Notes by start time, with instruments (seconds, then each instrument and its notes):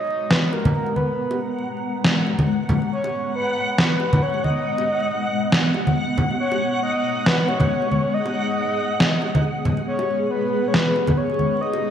Already playing: ambient pad G#3 B3 A#5, soft synth lead D#5, synth texture F#5
0.31 soft synth lead B4, snare
0.53 soft synth lead A#4, high bongo
0.65 high conga, low conga
0.86 high bongo
0.96 soft synth lead B4, high conga
1.31 high bongo
2.04 snare
2.27 high bongo
2.39 high conga
2.69 high conga, low conga
2.82 high bongo
2.92 soft synth lead C#5
3.04 high bongo
3.36 soft synth lead B4
3.78 soft synth lead B4, snare
4.00 high bongo
4.13 high conga, low conga
4.22 soft synth lead C#5
4.34 high bongo
4.44 soft synth lead D#5, high conga
4.78 high bongo
5.52 snare
5.74 high bongo
5.87 high conga
6.17 high conga, low conga
6.31 high bongo
6.39 ambient pad G#4, soft synth lead C#5
6.52 high bongo
6.83 soft synth lead D#5
7.26 soft synth lead B4, snare
7.48 soft synth lead C#5, high bongo
7.60 high conga, low conga
7.82 high bongo
7.92 high conga
8.14 soft synth lead D#5
8.26 high bongo
9.00 snare
9.22 high bongo
9.35 high conga
9.65 high conga, low conga
9.77 high bongo
9.87 soft synth lead C#5
9.99 high bongo
10.31 soft synth lead B4
10.68 soft synth lead C#5
10.74 soft synth lead B4, snare
10.96 high bongo
11.07 high conga, low conga
11.17 soft synth lead C#5
11.30 high bongo
11.39 high conga
11.61 soft synth lead D#5
11.73 high bongo